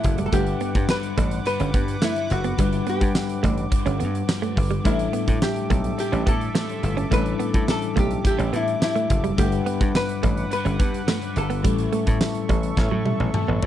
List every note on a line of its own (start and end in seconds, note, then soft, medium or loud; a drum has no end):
0.00 0.31 A2 medium
0.00 0.34 A2 medium
0.00 0.32 E3 medium
0.00 0.28 A3 medium
0.00 0.33 A3 medium
0.00 0.16 E4 medium
0.00 0.28 E4 medium
0.00 0.29 G4 medium
0.00 0.29 A4 medium
0.00 0.29 D5 medium
0.00 0.28 E5 medium
0.00 0.30 F#5 medium
0.00 0.28 D6 medium
0.00 closed hi-hat medium
0.04 0.26 F#1 medium
0.04 muted clean electric guitar stroke soft
0.04 kick medium
0.18 0.29 G3 medium
0.18 closed hi-hat medium
0.26 0.33 A4 medium
0.32 0.54 G1 loud
0.32 0.87 G2 medium
0.32 1.14 G2 medium
0.32 0.89 D3 medium
0.32 2.55 G3 medium
0.32 0.90 G3 medium
0.32 0.43 A3 medium
0.32 2.55 D4 medium
0.32 0.91 G4 loud
0.32 4.82 B4 medium
0.32 2.56 B4 medium
0.32 2.55 F#5 medium
0.32 4.82 F#5 medium
0.32 11.61 D6 medium
0.32 kick loud
0.32 closed hi-hat medium
0.47 closed hi-hat soft
0.61 0.71 B3 medium
0.61 closed hi-hat medium
0.75 0.86 G2 loud
0.75 muted clean electric guitar stroke soft
0.75 kick medium
0.75 closed hi-hat medium
0.88 1.43 G2 medium
0.88 1.46 D3 medium
0.88 1.46 G3 medium
0.88 1.42 B4 loud
0.88 snare loud
0.88 tambourine medium
1.03 closed hi-hat medium
1.17 1.39 A1 medium
1.17 1.28 A3 medium
1.17 kick medium
1.17 closed hi-hat medium
1.31 closed hi-hat medium
1.44 2.00 G2 medium
1.44 2.02 D3 medium
1.44 2.03 G3 medium
1.44 1.99 B4 loud
1.44 muted clean electric guitar stroke soft
1.44 closed hi-hat medium
1.60 1.71 G1 medium
1.60 1.70 C#4 medium
1.60 closed hi-hat medium
1.74 1.95 G2 loud
1.74 1.84 B3 medium
1.74 kick loud
1.74 closed hi-hat medium
1.88 closed hi-hat medium
2.01 2.56 G2 medium
2.01 2.58 D3 medium
2.01 2.60 G3 medium
2.01 2.12 A3 medium
2.01 2.31 E4 medium
2.01 snare loud
2.01 tambourine medium
2.16 closed hi-hat medium
2.30 2.52 F#1 medium
2.30 2.89 F#4 medium
2.30 muted clean electric guitar stroke soft
2.30 closed hi-hat medium
2.44 2.55 B3 medium
2.44 closed hi-hat medium
2.57 2.80 G1 loud
2.57 3.69 G2 medium
2.57 3.40 G2 medium
2.57 3.72 D3 medium
2.57 4.81 G3 medium
2.57 2.69 G3 medium
2.57 3.73 G3 medium
2.57 4.81 D4 medium
2.57 4.82 B4 medium
2.57 4.82 F#5 medium
2.57 kick loud
2.57 closed hi-hat medium
2.73 closed hi-hat soft
2.87 2.97 B3 medium
2.87 3.62 G4 medium
2.87 closed hi-hat medium
3.01 3.12 G2 loud
3.01 muted clean electric guitar stroke soft
3.01 kick medium
3.01 closed hi-hat soft
3.15 snare loud
3.15 tambourine medium
3.29 closed hi-hat medium
3.43 3.65 A1 medium
3.43 3.53 A3 medium
3.43 kick medium
3.43 closed hi-hat medium
3.58 closed hi-hat medium
3.62 3.98 F#4 medium
3.71 4.26 G2 medium
3.71 4.28 D3 medium
3.71 4.30 G3 medium
3.71 muted clean electric guitar stroke soft
3.71 kick loud
3.71 closed hi-hat medium
3.86 4.02 G1 loud
3.86 3.96 C#4 medium
3.86 closed hi-hat medium
4.00 4.22 G2 loud
4.00 4.10 B3 medium
4.00 closed hi-hat medium
4.15 closed hi-hat medium
4.27 4.83 G2 medium
4.27 4.85 D3 medium
4.27 4.86 G3 medium
4.27 snare loud
4.27 tambourine medium
4.42 4.53 A3 medium
4.42 closed hi-hat soft
4.56 4.78 G1 medium
4.56 muted clean electric guitar stroke soft
4.56 kick loud
4.56 open hi-hat medium
4.71 4.81 G3 medium
4.71 closed hi-hat medium
4.83 5.07 A1 loud
4.83 5.96 A2 medium
4.83 5.66 A2 medium
4.83 5.98 E3 medium
4.83 7.07 G3 medium
4.83 4.95 A3 medium
4.83 5.99 A3 medium
4.83 7.08 D4 medium
4.83 7.08 E4 medium
4.83 5.38 E4 medium
4.83 9.34 A4 medium
4.83 7.08 A4 medium
4.83 9.34 E5 medium
4.83 kick loud
4.83 closed hi-hat medium
4.99 closed hi-hat soft
5.13 5.23 B3 medium
5.13 closed hi-hat medium
5.28 5.38 A2 medium
5.28 muted clean electric guitar stroke soft
5.28 kick medium
5.28 closed hi-hat soft
5.42 5.99 G4 medium
5.42 snare loud
5.42 tambourine medium
5.56 closed hi-hat medium
5.70 5.92 B1 medium
5.70 5.80 A3 medium
5.70 kick medium
5.70 closed hi-hat medium
5.84 closed hi-hat medium
5.98 6.53 A2 medium
5.98 6.54 E3 medium
5.98 6.55 A3 medium
5.98 6.28 G4 medium
5.98 muted clean electric guitar stroke soft
5.98 closed hi-hat medium
6.12 6.23 A1 medium
6.12 6.23 C#4 medium
6.12 closed hi-hat medium
6.26 6.48 A2 loud
6.26 6.37 B3 medium
6.26 7.13 A4 loud
6.26 kick loud
6.26 closed hi-hat medium
6.41 closed hi-hat medium
6.54 7.09 A2 medium
6.54 7.11 E3 medium
6.54 6.65 A3 medium
6.54 7.13 A3 medium
6.54 snare loud
6.54 tambourine medium
6.70 closed hi-hat soft
6.83 7.05 G1 medium
6.83 muted clean electric guitar stroke soft
6.83 closed hi-hat medium
6.97 7.07 C#4 medium
6.97 closed hi-hat medium
7.10 7.33 A1 loud
7.10 8.22 A2 medium
7.10 7.92 A2 medium
7.10 8.24 E3 medium
7.10 9.33 G3 medium
7.10 7.21 A3 medium
7.10 8.25 A3 medium
7.10 7.18 C#4 soft
7.10 9.34 E4 medium
7.10 9.34 A4 medium
7.10 7.70 B4 loud
7.10 kick loud
7.10 closed hi-hat medium
7.17 9.36 D4 medium
7.26 closed hi-hat soft
7.39 7.50 B3 medium
7.39 closed hi-hat medium
7.54 7.65 A2 loud
7.54 muted clean electric guitar stroke soft
7.54 kick medium
7.54 closed hi-hat medium
7.68 7.98 A4 loud
7.68 snare loud
7.68 tambourine medium
7.82 closed hi-hat medium
7.96 8.18 B1 loud
7.96 8.06 A3 medium
7.96 8.25 G4 medium
7.96 kick medium
7.96 closed hi-hat medium
8.11 closed hi-hat medium
8.24 8.79 A2 medium
8.24 8.80 E3 medium
8.24 8.81 A3 medium
8.24 8.55 G4 loud
8.24 muted clean electric guitar stroke soft
8.24 kick loud
8.24 closed hi-hat medium
8.39 8.50 A1 loud
8.39 8.49 C#4 medium
8.39 closed hi-hat medium
8.53 8.74 A2 loud
8.53 8.63 B3 medium
8.53 8.82 E4 medium
8.53 closed hi-hat medium
8.68 closed hi-hat soft
8.80 9.36 A2 medium
8.80 9.38 E3 medium
8.80 9.39 A3 medium
8.80 9.22 E4 medium
8.80 snare loud
8.80 tambourine medium
8.96 9.06 A3 medium
8.96 closed hi-hat medium
9.10 9.31 F#1 medium
9.10 muted clean electric guitar stroke soft
9.10 kick medium
9.10 closed hi-hat medium
9.24 9.34 G3 medium
9.24 closed hi-hat medium
9.36 9.59 G1 loud
9.36 10.49 G2 medium
9.36 10.19 G2 medium
9.36 10.51 D3 medium
9.36 11.60 G3 medium
9.36 10.52 G3 medium
9.36 9.48 A3 medium
9.36 11.60 D4 medium
9.36 9.97 G4 medium
9.36 9.45 A4 medium
9.36 11.62 B4 medium
9.36 11.62 F#5 medium
9.36 11.61 F#5 medium
9.36 kick loud
9.36 closed hi-hat medium
9.46 11.64 B4 medium
9.52 closed hi-hat soft
9.66 9.76 B3 medium
9.66 closed hi-hat medium
9.81 9.91 G2 medium
9.81 muted clean electric guitar stroke soft
9.81 kick loud
9.81 closed hi-hat soft
9.95 10.52 B4 loud
9.95 snare loud
9.95 tambourine medium
10.09 closed hi-hat medium
10.23 10.44 A1 loud
10.23 10.33 A3 medium
10.23 kick medium
10.23 closed hi-hat medium
10.37 closed hi-hat medium
10.51 11.05 G2 medium
10.51 11.07 D3 medium
10.51 11.09 G3 medium
10.51 11.33 B4 medium
10.51 muted clean electric guitar stroke soft
10.51 closed hi-hat medium
10.65 10.76 G1 loud
10.65 10.75 C#4 medium
10.65 closed hi-hat medium
10.79 11.01 G2 loud
10.79 10.90 B3 medium
10.79 kick loud
10.79 closed hi-hat medium
10.94 closed hi-hat medium
11.07 11.62 G2 medium
11.07 11.64 D3 medium
11.07 11.66 G3 medium
11.07 11.18 A3 medium
11.07 snare loud
11.07 tambourine medium
11.22 closed hi-hat medium
11.36 11.65 G1 medium
11.36 11.90 A4 medium
11.36 muted clean electric guitar stroke soft
11.36 closed hi-hat medium
11.50 11.60 B3 medium
11.50 closed hi-hat medium
11.63 11.86 A1 loud
11.63 12.75 A2 medium
11.63 12.46 A2 medium
11.63 12.77 E3 medium
11.63 13.66 G3 medium
11.63 11.74 G3 loud
11.63 12.79 A3 medium
11.63 13.66 C#4 medium
11.63 13.66 E4 medium
11.63 13.66 A4 medium
11.63 13.66 E5 medium
11.63 13.66 C#6 medium
11.63 kick loud
11.63 closed hi-hat medium
11.79 closed hi-hat soft
11.93 12.03 A3 medium
11.93 closed hi-hat medium
12.07 12.18 A2 medium
12.07 muted clean electric guitar stroke soft
12.07 kick medium
12.07 closed hi-hat medium
12.21 snare loud
12.21 tambourine medium
12.35 closed hi-hat medium
12.49 12.71 A1 medium
12.49 12.59 G3 medium
12.49 kick medium
12.49 closed hi-hat medium
12.63 closed hi-hat soft
12.77 12.88 A1 medium
12.77 13.33 A2 medium
12.77 13.35 E3 medium
12.77 13.36 A3 medium
12.77 muted clean electric guitar stroke soft
12.77 kick loud
12.77 snare medium
12.91 13.02 A2 medium
12.91 13.02 F#3 medium
13.05 13.16 G3 medium
13.05 13.32 E5 medium
13.05 high tom medium
13.20 13.31 A1 medium
13.20 high tom medium
13.34 13.66 A2 medium
13.34 13.66 E3 medium
13.34 13.66 A3 medium
13.34 13.66 A5 medium
13.34 mid tom medium
13.48 13.59 A1 medium
13.48 13.58 B3 medium
13.62 13.66 A2 loud
13.62 muted clean electric guitar stroke soft
13.62 floor tom loud